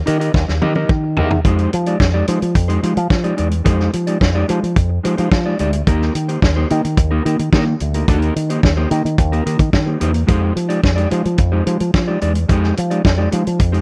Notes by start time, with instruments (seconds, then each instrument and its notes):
0.06 fingered electric bass D#3, clean electric guitar D#4 G4 A#4 D#5, closed hi-hat
0.20 clean electric guitar D#4 G4 A#4 D#5, closed hi-hat
0.34 fingered electric bass D#2, kick, snare
0.48 fingered electric bass D#2, muted clean electric guitar stroke, snare
0.62 fingered electric bass D#3, clean electric guitar D#4 G4 A#4 D#5, high tom
0.75 clean electric guitar D#4 G4 A#4 D#5, high tom
0.89 fingered electric bass D#3, kick
1.03 muted clean electric guitar stroke
1.17 fingered electric bass E2, clean electric guitar D#4 G4 A#4 D#5, floor tom
1.31 muted clean electric guitar stroke, floor tom
1.45 fingered electric bass F2, clean electric guitar G#3 D#4 G4 C5, kick, closed hi-hat
1.59 closed hi-hat
1.73 fingered electric bass F3, muted clean electric guitar stroke, closed hi-hat
1.86 clean electric guitar G#3 D#4 G4 D5, closed hi-hat
2.00 fingered electric bass F2, kick, snare
2.14 clean electric guitar G#3 D#4 G4 D5
2.27 fingered electric bass F3, clean electric guitar G#3 D#4 G4 C5, closed hi-hat
2.41 fingered electric bass F3, muted clean electric guitar stroke, closed hi-hat
2.55 fingered electric bass F2, muted clean electric guitar stroke, kick, closed hi-hat
2.68 clean electric guitar G#3 D#4 G4 C5, closed hi-hat
2.83 fingered electric bass F3, clean electric guitar G#3 D#4 G4 C5, closed hi-hat
2.96 fingered electric bass F3, muted clean electric guitar stroke, closed hi-hat
3.10 fingered electric bass F3, muted clean electric guitar stroke, kick, snare
3.24 clean electric guitar G#3 D#4 G4 D5, closed hi-hat
3.37 fingered electric bass E2, clean electric guitar G#3 D#4 G4 D5, closed hi-hat
3.51 muted clean electric guitar stroke, closed hi-hat
3.64 fingered electric bass F2, clean electric guitar G#3 D#4 G4 C5, kick, closed hi-hat
3.80 snare
3.93 fingered electric bass F3, closed hi-hat
4.07 clean electric guitar G#3 D#4 G4 D5, closed hi-hat
4.20 fingered electric bass F2, muted clean electric guitar stroke, kick, snare
4.35 clean electric guitar G#3 D#4 G4 D5
4.48 fingered electric bass F3, clean electric guitar G#3 D#4 G4 C5, closed hi-hat
4.62 fingered electric bass F3, muted clean electric guitar stroke, closed hi-hat
4.76 fingered electric bass F2, muted clean electric guitar stroke, kick, closed hi-hat
4.89 muted clean electric guitar stroke
5.03 fingered electric bass F3, clean electric guitar G#3 D#4 G4 C5, closed hi-hat
5.17 fingered electric bass F3, clean electric guitar G#3 D#4 G4 C5, closed hi-hat
5.32 fingered electric bass F3, kick, snare
5.45 clean electric guitar G#3 D#4 G4 D5
5.59 fingered electric bass D2, clean electric guitar G#3 D#4 G4 D5, closed hi-hat
5.73 muted clean electric guitar stroke, closed hi-hat
5.87 fingered electric bass D#2, clean electric guitar A#3 D#4 G4 A#4, kick, closed hi-hat
6.02 snare
6.15 fingered electric bass D#3, muted clean electric guitar stroke, closed hi-hat
6.28 clean electric guitar A#3 D#4 G4 C5, closed hi-hat
6.42 fingered electric bass D#2, muted clean electric guitar stroke, kick, snare
6.56 clean electric guitar A#3 D#4 G4 C5
6.70 fingered electric bass D#3, clean electric guitar A#3 D#4 G4 A#4, closed hi-hat
6.84 fingered electric bass D#3, muted clean electric guitar stroke, closed hi-hat
6.97 fingered electric bass D#2, muted clean electric guitar stroke, kick, closed hi-hat
7.11 clean electric guitar A#3 D#4 G4 A#4
7.25 fingered electric bass D#3, clean electric guitar A#3 D#4 G4 A#4, closed hi-hat
7.39 fingered electric bass D#3, muted clean electric guitar stroke, closed hi-hat
7.53 fingered electric bass D#3, clean electric guitar A#3 D#4 G4 A#4, kick, snare
7.67 muted clean electric guitar stroke
7.80 fingered electric bass D2, muted clean electric guitar stroke, closed hi-hat
7.94 clean electric guitar A#3 D#4 G4 A#4, closed hi-hat
8.08 fingered electric bass D#2, clean electric guitar A3 D4 G4 A#4, kick, closed hi-hat
8.19 clean electric guitar A#3 D#4, closed hi-hat
8.36 fingered electric bass D#3, muted clean electric guitar stroke, closed hi-hat
8.50 clean electric guitar A#3 D#4 G4 C5, closed hi-hat
8.63 fingered electric bass D#2, kick, snare
8.77 clean electric guitar A#3 D#4 G4 C5
8.90 fingered electric bass D#3, clean electric guitar A#3 D#4 G4 A#4, closed hi-hat
9.05 fingered electric bass D#3, muted clean electric guitar stroke, closed hi-hat
9.18 fingered electric bass D#2, muted clean electric guitar stroke, kick, closed hi-hat
9.32 clean electric guitar A#3 D#4 G4 A#4, closed hi-hat
9.46 fingered electric bass D#3, clean electric guitar A#3 D#4 G4 A#4, closed hi-hat
9.59 fingered electric bass D#3, muted clean electric guitar stroke, kick, closed hi-hat
9.73 fingered electric bass D#3, muted clean electric guitar stroke, kick, snare
9.86 clean electric guitar A#3 D#4 G4 C5
10.00 fingered electric bass E2, clean electric guitar A#3 D#4 G4 C5, closed hi-hat
10.14 muted clean electric guitar stroke, closed hi-hat
10.27 fingered electric bass F2, clean electric guitar G#3 D#4 G4 C5, kick, closed hi-hat
10.56 fingered electric bass F3, closed hi-hat
10.69 clean electric guitar G#3 D#4 G4 D5, closed hi-hat
10.84 fingered electric bass F2, kick, snare
10.96 clean electric guitar G#3 D#4 G4 D5, closed hi-hat
11.10 fingered electric bass F3, clean electric guitar G#3 D#4 G4 C5, closed hi-hat
11.24 fingered electric bass F3, muted clean electric guitar stroke, closed hi-hat
11.37 fingered electric bass F2, muted clean electric guitar stroke, kick, closed hi-hat
11.52 clean electric guitar G#3 D#4 G4 C5
11.66 fingered electric bass F3, clean electric guitar G#3 D#4 G4 C5, closed hi-hat
11.80 fingered electric bass F3, muted clean electric guitar stroke, closed hi-hat
11.94 fingered electric bass F3, muted clean electric guitar stroke, kick, snare
12.08 clean electric guitar G#3 D#4 G4 D5
12.21 fingered electric bass E2, clean electric guitar G#3 D#4 G4 D5, closed hi-hat
12.35 muted clean electric guitar stroke, closed hi-hat
12.49 fingered electric bass F2, clean electric guitar G#3 D#4 G4 C5, kick, closed hi-hat
12.63 snare
12.77 fingered electric bass F3, muted clean electric guitar stroke, closed hi-hat
12.90 clean electric guitar G#3 D#4 G4 D5, closed hi-hat
13.05 fingered electric bass F2, kick, snare
13.18 clean electric guitar G#3 D#4 G4 D5
13.31 fingered electric bass F3, clean electric guitar G#3 D#4 G4 C5, closed hi-hat
13.45 fingered electric bass F3, muted clean electric guitar stroke, closed hi-hat
13.59 fingered electric bass F2, muted clean electric guitar stroke, kick, closed hi-hat
13.72 clean electric guitar G#3 D#4 G4 C5, closed hi-hat